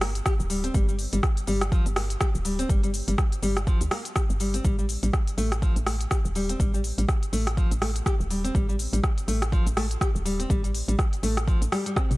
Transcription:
Already playing: fm bass G1
0.01 nylon-string guitar A#3, cross-stick, open hi-hat, shaker
0.15 closed hi-hat, shaker
0.25 nylon-string guitar G4, kick, cross-stick, shaker
0.40 fm bass D1, shaker
0.50 nylon-string guitar G3, open hi-hat, shaker
0.64 nylon-string guitar C4, closed hi-hat, shaker
0.74 fm bass G1, nylon-string guitar G3, kick, shaker
0.88 nylon-string guitar G3, shaker
0.99 open hi-hat, shaker
1.13 fm bass G1, nylon-string guitar G3, closed hi-hat, shaker
1.23 kick, cross-stick, shaker
1.37 closed hi-hat, shaker
1.47 fm bass G1, nylon-string guitar G3, open hi-hat, shaker
1.61 cross-stick, closed hi-hat, shaker
1.72 nylon-string guitar F3, kick, shaker
1.86 fm bass G1, closed hi-hat, shaker
1.96 nylon-string guitar A#3, cross-stick, open hi-hat, shaker
2.10 closed hi-hat, shaker
2.21 nylon-string guitar G4, kick, cross-stick, shaker
2.35 fm bass D1, shaker
2.45 nylon-string guitar G3, open hi-hat, shaker
2.59 nylon-string guitar C4, closed hi-hat, shaker
2.69 fm bass G1, nylon-string guitar G3, kick, shaker
2.83 nylon-string guitar G3, closed hi-hat, shaker
2.94 open hi-hat, shaker
3.08 fm bass G1, nylon-string guitar G3, closed hi-hat, shaker
3.18 kick, cross-stick, shaker
3.32 closed hi-hat, shaker
3.43 fm bass G1, nylon-string guitar G3, open hi-hat, shaker
3.57 cross-stick, closed hi-hat, shaker
3.67 nylon-string guitar F3, kick, shaker
3.81 fm bass D2, closed hi-hat, shaker
3.91 nylon-string guitar A#3, cross-stick, open hi-hat, shaker
4.05 closed hi-hat, shaker
4.16 nylon-string guitar G4, kick, cross-stick, shaker
4.30 fm bass G1, shaker
4.40 nylon-string guitar G3, open hi-hat, shaker
4.54 nylon-string guitar C4, closed hi-hat, shaker
4.65 fm bass A1, nylon-string guitar G3, kick, shaker
4.79 nylon-string guitar G3, shaker
4.89 open hi-hat, shaker
5.03 fm bass A1, nylon-string guitar G3, closed hi-hat, shaker
5.13 kick, cross-stick, shaker
5.27 closed hi-hat, shaker
5.38 fm bass A1, nylon-string guitar A3, open hi-hat, shaker
5.52 cross-stick, closed hi-hat, shaker
5.62 nylon-string guitar F3, kick, shaker
5.76 fm bass A1, closed hi-hat, shaker
5.87 nylon-string guitar A3, cross-stick, open hi-hat, shaker
6.01 closed hi-hat, shaker
6.11 nylon-string guitar G4, kick, cross-stick, shaker
6.25 fm bass D#1, shaker
6.35 nylon-string guitar G3, open hi-hat, shaker
6.49 nylon-string guitar C4, closed hi-hat, shaker
6.60 fm bass A1, nylon-string guitar G3, kick, shaker
6.74 nylon-string guitar G3, shaker
6.84 open hi-hat, shaker
6.98 fm bass A1, nylon-string guitar G3, closed hi-hat, shaker
7.09 kick, cross-stick, shaker
7.23 closed hi-hat, shaker
7.33 fm bass A1, nylon-string guitar A3, open hi-hat, shaker
7.47 cross-stick, closed hi-hat, shaker
7.57 nylon-string guitar F3, kick, shaker
7.71 fm bass A1, closed hi-hat, shaker
7.82 nylon-string guitar A3, cross-stick, open hi-hat, shaker
7.96 closed hi-hat, shaker
8.06 nylon-string guitar G4, kick, cross-stick, shaker
8.20 fm bass D#1, shaker
8.31 nylon-string guitar G3, open hi-hat, shaker
8.44 nylon-string guitar C4, closed hi-hat, shaker
8.55 fm bass A1, nylon-string guitar G3, kick, shaker
8.69 nylon-string guitar G3, shaker
8.79 open hi-hat, shaker
8.93 fm bass A1, nylon-string guitar G3, closed hi-hat, shaker
9.04 kick, cross-stick, shaker
9.18 closed hi-hat, shaker
9.28 fm bass A1, nylon-string guitar A3, open hi-hat, shaker
9.42 cross-stick, closed hi-hat, shaker
9.52 nylon-string guitar F3, kick, shaker
9.66 fm bass A1, closed hi-hat, shaker
9.77 nylon-string guitar A3, cross-stick, open hi-hat, shaker
9.91 closed hi-hat, shaker
10.01 nylon-string guitar G4, kick, cross-stick, shaker
10.15 fm bass D#1, shaker
10.25 nylon-string guitar G3, open hi-hat, shaker
10.39 nylon-string guitar C4, closed hi-hat, shaker
10.50 fm bass A1, nylon-string guitar G3, kick, shaker
10.64 nylon-string guitar G3, closed hi-hat, shaker
10.75 open hi-hat, shaker
10.88 fm bass A1, nylon-string guitar G3, closed hi-hat, shaker
10.99 kick, cross-stick, shaker
11.13 closed hi-hat, shaker
11.23 fm bass A1, nylon-string guitar A3, open hi-hat, shaker
11.37 cross-stick, closed hi-hat, shaker
11.47 nylon-string guitar F3, kick, shaker
11.62 fm bass A1, closed hi-hat, shaker
11.72 nylon-string guitar G3, cross-stick, open hi-hat, shaker
11.86 nylon-string guitar G3, closed hi-hat, shaker
11.96 nylon-string guitar C4, kick, cross-stick, shaker
12.10 fm bass A1, closed hi-hat, high tom, shaker

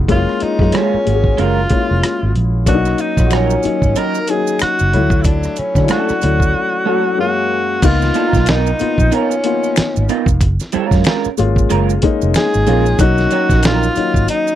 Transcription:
Already playing: upright piano A#3 F4 F#4 G#4 A#4
0.08 fingered electric bass F#1, upright piano G#3 A#3 C#4 E4, tenor saxophone F4, kick, closed hi-hat
0.16 upright piano F4
0.29 cross-stick
0.40 tenor saxophone D#4, muted fingered electric bass stroke, closed hi-hat
0.59 fingered electric bass F#2, upright piano G#3 A#3 C#4 F4, kick, cross-stick
0.72 clean electric guitar G#3 C#4 F4 A#4, tenor saxophone C#4, cross-stick, closed hi-hat
0.94 muted fingered electric bass stroke
1.05 fingered electric bass G#1, upright piano G#3 A#3 C#4 F#4, closed hi-hat
1.13 upright piano G#4
1.24 kick
1.38 fingered electric bass F#1, clean electric guitar G#3 C#4 F4 A#4, tenor saxophone F4, closed hi-hat
1.70 upright piano G#3 A#3 C#4 E4, kick, closed hi-hat
1.78 upright piano F4
1.91 fingered electric bass F1
2.03 cross-stick, closed hi-hat
2.23 fingered electric bass G#1
2.35 fingered electric bass A#1, closed hi-hat
2.66 fingered electric bass B1, upright piano F#3 A#3 C#4 D4, tenor saxophone F#4, kick, closed hi-hat, maracas
2.74 upright piano D#4
2.85 cross-stick, maracas
2.98 tenor saxophone D#4, closed hi-hat, maracas
3.17 fingered electric bass A#1, upright piano F#3 A#3 C#4 F4, kick, cross-stick, maracas
3.26 upright piano F#4
3.31 clean electric guitar F#3 C#4 D#4 A#4, tenor saxophone C#4, finger snap, cross-stick, closed hi-hat, maracas
3.50 maracas
3.63 upright piano F#3 A#3 C#4 D#4, muted fingered electric bass stroke, closed hi-hat, maracas
3.82 fingered electric bass G#1, kick, maracas
3.96 clean electric guitar F#3 C#4 D#4 A#4, tenor saxophone A#4, closed hi-hat, maracas
4.15 maracas
4.27 upright piano F#3 A#3 C#4 D#4, tenor saxophone G#4, closed hi-hat, maracas
4.47 maracas
4.59 tenor saxophone F#4, finger snap, muted fingered electric bass stroke, cross-stick, closed hi-hat, maracas
4.79 fingered electric bass F#1, maracas
4.93 fingered electric bass D2, upright piano F#3 A3 E4 C#5, closed hi-hat
5.10 kick, maracas
5.21 tenor saxophone E4, kick, closed hi-hat, maracas
5.26 tenor saxophone D4
5.43 cross-stick, maracas
5.56 tenor saxophone C#4, muted fingered electric bass stroke, closed hi-hat, maracas
5.75 fingered electric bass D3, upright piano F#3 A3 C#4 D4, kick, cross-stick, maracas
5.84 upright piano E4
5.88 clean electric guitar A3 C#4 F#4 A4, tenor saxophone F#4, finger snap, cross-stick, closed hi-hat, maracas
6.09 muted fingered electric bass stroke, cross-stick, maracas
6.21 fingered electric bass D2, upright piano F#3 A3 C#4 E4, closed hi-hat, maracas
6.40 kick, maracas
6.85 upright piano F#3 A3 C#4 F#4, clean electric guitar A3 C#4 F#4 A4
7.18 upright piano F#2 G#3 A#3 C#4 F5, tenor saxophone F#4
7.82 fingered electric bass C#2, upright piano A#3 B3 D#4 F4, tenor saxophone F4, kick, closed hi-hat, crash, maracas
8.02 snare, maracas
8.14 clean electric guitar A#3 D4 E4 A4, closed hi-hat, maracas
8.27 clean electric guitar B3 D#4 F4 A#4
8.33 fingered electric bass B1, kick, snare, maracas
8.46 clean electric guitar B3 D#4 F4 A#4, tenor saxophone D#4, finger snap, snare, closed hi-hat, maracas
8.67 maracas
8.79 upright piano A#3 B3 D#4 F4, muted fingered electric bass stroke, closed hi-hat, maracas
8.98 fingered electric bass A#1, kick, maracas
9.12 clean electric guitar B3 D#4 F4 A#4, tenor saxophone C#4, closed hi-hat, maracas
9.31 maracas
9.44 upright piano A#3 B3 D#4 F4, closed hi-hat
9.63 maracas
9.76 finger snap, muted fingered electric bass stroke, snare, closed hi-hat, maracas
9.96 fingered electric bass G#1, maracas
10.09 clean electric guitar B3 D#4 F4 A#4, closed hi-hat, maracas
10.26 fingered electric bass F1, kick, maracas
10.41 fingered electric bass F#1, kick, closed hi-hat, maracas
10.60 snare, maracas
10.72 clean electric guitar G3 C4 E4 A4, muted fingered electric bass stroke, closed hi-hat, maracas
10.85 clean electric guitar G#3 C#4 F4 A#4
10.91 fingered electric bass F#2, kick, snare, maracas
11.04 clean electric guitar G#3 C#4 F4 A#4, finger snap, snare, closed hi-hat, maracas
11.24 muted fingered electric bass stroke, maracas
11.37 fingered electric bass G#1, upright piano G#3 A#3 C#4 F4, closed hi-hat, maracas
11.56 kick, maracas
11.70 fingered electric bass F#1, clean electric guitar G#3 C#4 F4 A#4, closed hi-hat, maracas
11.89 maracas
12.02 upright piano G#3 A#3 C#4 D#4, kick, closed hi-hat
12.21 fingered electric bass F1, maracas
12.34 tenor saxophone G#4, finger snap, snare, closed hi-hat, maracas
12.54 fingered electric bass G#1, maracas
12.67 fingered electric bass A#1, upright piano G#3 A#3 C#4 F4, clean electric guitar G#3 C#4 F4 A#4, closed hi-hat, maracas
12.86 maracas
12.99 fingered electric bass B1, upright piano F#3 A#3 C#4 D#4, tenor saxophone F#4, kick, closed hi-hat, maracas
13.18 snare, maracas
13.31 clean electric guitar F#3 C#4 D#4 A#4, closed hi-hat, maracas
13.50 fingered electric bass A#1, kick, snare, maracas
13.63 clean electric guitar F#3 C#4 D#4 A#4, tenor saxophone F4, finger snap, snare, closed hi-hat, maracas
13.83 maracas
13.95 upright piano F#3 A#3 C#4 D#4, muted fingered electric bass stroke, closed hi-hat, maracas
14.14 fingered electric bass G#1, kick, maracas
14.28 tenor saxophone D#4, closed hi-hat, maracas
14.47 maracas

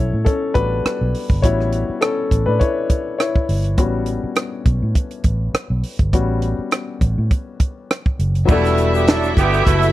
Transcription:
Already playing: fingered electric bass B1, grand piano G3 B3 C#4 E4 F#4 A4 C#5
0.14 fingered electric bass A2
0.25 grand piano C#4 A4, kick, closed hi-hat
0.54 fingered electric bass A1, grand piano G3 B3 C#4 D4 F#4 B4, kick, closed hi-hat
0.85 muted fingered electric bass stroke, cross-stick, closed hi-hat
1.01 fingered electric bass B1
1.15 open hi-hat
1.30 fingered electric bass G1, kick
1.42 fingered electric bass A1, grand piano G3 B3 C#4 E4 F#4 C#5, kick, closed hi-hat
1.61 cross-stick
1.73 closed hi-hat
1.89 muted fingered electric bass stroke
2.01 grand piano C#4 A4, cross-stick, closed hi-hat
2.31 fingered electric bass A1, kick, closed hi-hat
2.46 fingered electric bass A2, grand piano D4 B4
2.60 grand piano E4 C#5, kick, closed hi-hat
2.90 kick, closed hi-hat
3.18 grand piano E4 C#5, cross-stick, closed hi-hat
3.36 kick
3.49 fingered electric bass G1, open hi-hat
3.64 closed hi-hat
3.78 fingered electric bass A1, grand piano G3 B3 C#4 F#4, kick, closed hi-hat
4.06 closed hi-hat
4.24 muted fingered electric bass stroke
4.36 cross-stick, closed hi-hat
4.66 fingered electric bass B1, kick, closed hi-hat
4.82 fingered electric bass A2
4.95 kick, closed hi-hat
5.11 closed hi-hat
5.24 fingered electric bass A1, kick, closed hi-hat
5.54 muted fingered electric bass stroke, cross-stick, closed hi-hat
5.70 fingered electric bass B1
5.84 open hi-hat
5.99 fingered electric bass G1, kick, closed hi-hat
6.13 fingered electric bass A1, grand piano G3 B3 C#4 F#4, kick, closed hi-hat
6.42 closed hi-hat
6.59 muted fingered electric bass stroke
6.71 cross-stick, closed hi-hat
7.01 fingered electric bass A1, kick, closed hi-hat
7.18 fingered electric bass A2
7.31 kick, closed hi-hat
7.60 kick, closed hi-hat
7.91 cross-stick, closed hi-hat
8.06 kick
8.19 fingered electric bass F#1, closed hi-hat
8.35 closed hi-hat
8.45 fingered electric bass E1, horn section B2 A3 E4, grand piano F#3 B3 D4, string section E4 E5, french horn section F#4, kick, crash, shaker
8.50 french horn section D3 G3 A3, grand piano G3 F#4 A4
8.65 snare, shaker
8.78 closed hi-hat, shaker
8.94 horn section D3 B3 G4, shaker
9.08 horn section F#3 D4 A4, snare, closed hi-hat, shaker
9.23 shaker
9.37 fingered electric bass G1, horn section D3 B3 G4, kick, closed hi-hat, shaker
9.54 shaker
9.66 fingered electric bass F#1, horn section B2 A3 E4, kick, closed hi-hat, shaker
9.82 closed hi-hat, shaker

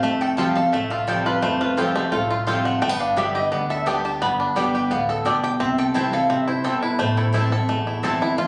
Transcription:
Already playing: five-string banjo F4
0.03 upright bass F1, steel-string acoustic guitar F2, five-string banjo A3, resonator guitar played with a steel bar E5
0.21 five-string banjo A4, resonator guitar played with a steel bar G5
0.37 steel-string acoustic guitar F3 G3 C4 G4, mandolin A3 F4 C5 G5, five-string banjo F4, resonator guitar played with a steel bar A5
0.55 steel-string acoustic guitar C4 G4, five-string banjo A4, resonator guitar played with a steel bar F5
0.72 upright bass C2, steel-string acoustic guitar A2, five-string banjo A3, resonator guitar played with a steel bar E5
0.90 five-string banjo F4, resonator guitar played with a steel bar F5
1.07 steel-string acoustic guitar F3 G3 C4 G4, mandolin A3 F4 C5 G5, five-string banjo A4, resonator guitar played with a steel bar D5
1.26 five-string banjo F4, resonator guitar played with a steel bar B4
1.42 upright bass F1, steel-string acoustic guitar F2, five-string banjo A3, resonator guitar played with a steel bar C5
1.61 five-string banjo F4, resonator guitar played with a steel bar B4
1.77 steel-string acoustic guitar F3 G3 C4 G4, mandolin A3 F4 C5 G5, five-string banjo F4, resonator guitar played with a steel bar A4
1.95 five-string banjo A3, resonator guitar played with a steel bar G4
2.12 upright bass C2, steel-string acoustic guitar A2, five-string banjo F4, resonator guitar played with a steel bar A4
2.30 five-string banjo F4, resonator guitar played with a steel bar F4
2.47 steel-string acoustic guitar F3 G3 C4 G4, mandolin A3 F4 C5 G5, five-string banjo F4
2.65 five-string banjo A3, resonator guitar played with a steel bar F#5
2.82 upright bass G1, steel-string acoustic guitar G2, five-string banjo A3, resonator guitar played with a steel bar G5
2.89 five-string banjo B3
2.99 five-string banjo D4, resonator guitar played with a steel bar F5
3.16 steel-string acoustic guitar D3 G3 B3 G4, five-string banjo G3, mandolin B3 G4 D5 G5, resonator guitar played with a steel bar E5
3.35 five-string banjo G4, resonator guitar played with a steel bar D#5
3.52 upright bass D2, steel-string acoustic guitar D3, five-string banjo B3, resonator guitar played with a steel bar D5
3.70 five-string banjo A4, resonator guitar played with a steel bar E5
3.86 steel-string acoustic guitar D3 G3 B3 G4, mandolin B3 G4 D5 G5, five-string banjo D4, resonator guitar played with a steel bar G5
4.05 five-string banjo G4, resonator guitar played with a steel bar A5
4.21 upright bass G1, steel-string acoustic guitar G2, five-string banjo B3, resonator guitar played with a steel bar B5
4.40 five-string banjo D4
4.56 steel-string acoustic guitar D3 G3 B3 G4, five-string banjo G3, mandolin B3 G4 D5 G5
4.75 five-string banjo G4, resonator guitar played with a steel bar G5
4.91 upright bass D2, steel-string acoustic guitar A2, five-string banjo B3, resonator guitar played with a steel bar F5
5.09 five-string banjo A4, resonator guitar played with a steel bar A4
5.25 steel-string acoustic guitar B2, mandolin B3 G4 D5 G5, five-string banjo D4, resonator guitar played with a steel bar D5
5.43 five-string banjo G4, resonator guitar played with a steel bar G5
5.60 upright bass C2, steel-string acoustic guitar C3, five-string banjo C4, resonator guitar played with a steel bar E5
5.78 five-string banjo A4, resonator guitar played with a steel bar G5
5.94 steel-string acoustic guitar E3 G3 C4 E4, mandolin C4 E4 C5 G5, five-string banjo E4, resonator guitar played with a steel bar A5
6.12 steel-string acoustic guitar C4 E4, five-string banjo A4, resonator guitar played with a steel bar F5
6.29 upright bass G1, steel-string acoustic guitar C3, five-string banjo C4, resonator guitar played with a steel bar E5
6.48 five-string banjo E4, resonator guitar played with a steel bar C5
6.64 steel-string acoustic guitar B2, mandolin C4 E4 C5 G5, resonator guitar played with a steel bar A4, five-string banjo A4
6.83 five-string banjo E4, resonator guitar played with a steel bar B4
6.99 upright bass A1, steel-string acoustic guitar A2, five-string banjo A3, resonator guitar played with a steel bar C5
7.17 resonator guitar played with a steel bar E4, five-string banjo A4
7.33 steel-string acoustic guitar E3 A3 C4 E4, mandolin C4 E4 C5 A5, five-string banjo E4
7.51 steel-string acoustic guitar C4 E4, five-string banjo A4
7.68 upright bass A1, steel-string acoustic guitar E2, five-string banjo A3
7.87 five-string banjo E4
8.03 upright bass G1, steel-string acoustic guitar E3 A3 C4 E4, mandolin C4 E4 C5 A5, five-string banjo A4
8.22 five-string banjo E4
8.38 upright bass F1, steel-string acoustic guitar F2, five-string banjo F4

